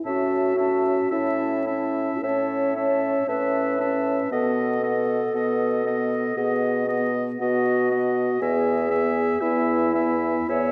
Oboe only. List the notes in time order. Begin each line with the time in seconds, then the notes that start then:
0.05 E5
0.58 E5
1.11 E5
1.67 E5
2.23 E5
2.76 E5
3.29 E5
3.81 E5
4.32 D#5
4.83 D#5
5.35 D#5
5.87 D#5
6.37 D#5
6.88 D#5
7.41 D#5
7.91 D#5
8.42 E5
8.91 E5
9.40 E5
9.95 E5
10.49 E5